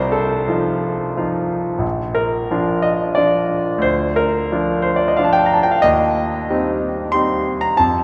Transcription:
grand piano
Already playing: C2 C5
0.12 A4
0.48 F3 D#4 F4
1.17 F3 D#4 F4
1.79 A#1
2.15 A#4
2.51 F3 D4 F4
2.82 D#5
3.15 F3 D4 F4 D5
3.78 D2 C5
4.16 A#4
4.52 F3 D4 F4
4.82 C5
4.96 D5
5.08 D#5
5.17 F3 D4 F4 F5
5.24 A5
5.33 G5
5.39 A5
5.46 A#5
5.54 A5
5.63 G5
5.71 F5
5.82 D#2 D#5
6.50 G3 C4 D#4
7.12 G3 C4 D#4 C6
7.61 A#5
7.77 F2 A5

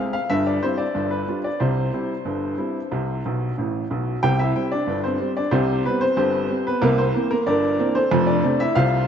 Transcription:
upright piano
Already playing: G#3 C4 G#4
0.13 F5
0.30 G1 G2 E5
0.47 D5
0.63 G3 C4 E4 C5
0.78 D5
0.95 G1 G2
1.11 B4
1.28 G3 D4 F4
1.44 D5
1.60 C2 C3 C5
1.93 G3 C4 E4
2.25 G1 G2
2.58 G3 C4 E4
2.92 C2 C3
3.25 B1 B2
3.58 A1 A2
3.90 B1 B2
4.23 C2 C3 G4 G5
4.39 E4 E5
4.55 G3 C4
4.72 D4 D5
4.87 G1 G2
5.04 C4 C5
5.20 G3 C4
5.37 D4 D5
5.51 C2 C3 C4 G4 C5
5.86 G3 B3 C4 B4
6.01 C4 C5
6.17 G1 G2 C4 G4 C5
6.50 G3 C4
6.67 B3 B4
6.81 C2 C3 A#3 A#4
6.98 C4 C5
7.15 E3 A#3 C4
7.31 A#3 A#4
7.47 G1 G2 D4 A#4 D5
7.79 E3 A#3 C4
7.95 C4 A4 C5
8.11 F1 F2
8.27 D4 D5
8.43 C3 A3 C4
8.60 E4 E5
8.75 C2 C3 F4 C5 F5

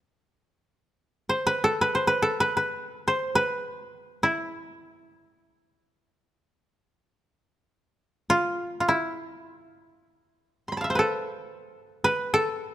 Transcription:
koto
Already playing: A4
1.29 C5
1.47 B4
1.64 A4
1.81 B4
1.95 C5
2.07 B4
2.22 A4
2.40 B4
2.57 B4
3.08 C5
3.35 B4
4.23 E4
8.30 F4
8.80 F4
8.88 E4
10.68 B5 C6
10.77 F5 A5
10.84 E5
10.90 C5
10.95 A4 B4
12.04 B4
12.34 A4

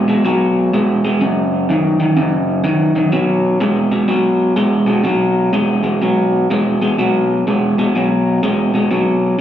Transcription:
clean electric guitar
0.08 B2 G#3
0.25 B2 F#3
0.73 B2 G#3
1.04 B2 G#3
1.21 F#2 C#3
1.69 F#2 D#3
2.00 F#2 D#3
2.17 F#2 C#3
2.64 F#2 D#3
2.95 F#2 D#3
3.12 B2 F#3
3.60 B2 G#3
3.92 B2 G#3
4.08 B2 F#3
4.56 B2 G#3
4.86 B2 G#3
5.04 B2 F#3
5.53 B2 G#3
5.83 B2 G#3
6.02 B2 F#3
6.50 B2 G#3
6.82 B2 G#3
6.98 B2 F#3
7.47 B2 G#3
7.78 B2 G#3
7.95 B2 F#3
8.43 B2 G#3
8.74 B2 G#3
8.91 B2 F#3

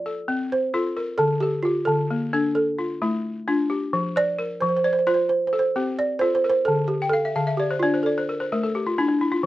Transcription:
balafon
Already playing: C5 D5
0.06 A4
0.28 C4
0.52 C5
0.74 F4 A4
0.97 A#4
1.18 D3 A4
1.40 G4 A4
1.63 F4 G4
1.85 D3 A4
2.11 A#3
2.33 D4 A4
2.55 A4
2.79 F4
3.02 A3 E4
3.48 D4 F4
3.70 G4
3.93 F3
4.16 C5 D5
4.39 A#4
4.61 F3 C5
4.69 C5
4.77 C5
4.84 C5 D5
4.93 C5
4.99 C5
5.07 F4 C5
5.14 C5
5.29 C5
5.47 C5
5.53 A4
5.59 C5
5.76 C4 G4
5.99 D5
6.19 F4 A4 C5
6.35 C5
6.44 A#4
6.50 C5
6.65 D3 A4
6.88 G4
7.02 G5
7.09 A4 F5
7.25 E5
7.36 D3 F5
7.47 E5
7.57 G4 D5
7.71 C5
7.79 D4 F4 D5
7.94 C5
8.03 A4 D5
8.18 C5
8.29 A#4
8.40 C5
8.52 A3 A#4
8.63 A4
8.75 G4
8.87 F4
8.98 D4 E4
9.09 D4
9.21 E4
9.32 F4

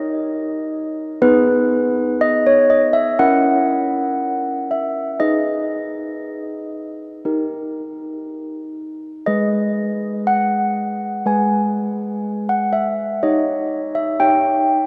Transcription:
handbells
Already playing: D#4 G4 A#4 D#5
1.22 B3 D#4 G#4 B4
2.21 D#5
2.47 C#5
2.70 D#5
2.93 E5
3.19 C#4 E4 A#4 F#5
4.71 E5
5.19 D#4 G#4 B4 D#5
7.25 D#4 G4 A#4
9.26 G#3 G#4 B4 D#5
10.27 F#5
11.26 G#3 G#4 B4 G#5
12.49 F#5
12.73 E5
13.23 D#4 G4 C#5 D#5
13.95 E5
14.20 D#4 G4 C#5 G5

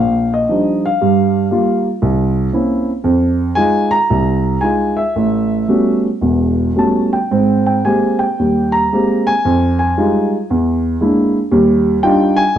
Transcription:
grand piano
Already playing: A#1 F5
0.34 D#5
0.49 F3 G3 D4 D#4
0.86 F5
1.01 G2 G3
1.51 G3 A#3 F4
2.02 C2
2.53 A#3 C4 C#4 E4
3.04 F2
3.55 G#3 D#4 F4 G#5
3.91 A#5
4.10 C2
4.61 G#3 D#4 F4 G#5
4.97 E5
5.16 A1
5.68 G3 A3 B3 C#4 F#4
6.21 E1 E2
6.75 G3 A3 B3 C#4 F#4 A5
7.13 G5
7.31 G#2 C4
7.67 G5
7.85 G#3 A#3 C4 G4 G#5
8.19 G5
8.39 D#2 G3
8.72 A#5
8.92 G#3 A#3 C4 G4
9.27 G#5
9.45 F2
9.79 G#5
9.97 G3 G#3 D#4 F4
10.50 E2
11.01 G#3 A#3 D4 E4
11.51 D#2 G3
12.03 G3 D4 D#4 F4 G5
12.36 G#5

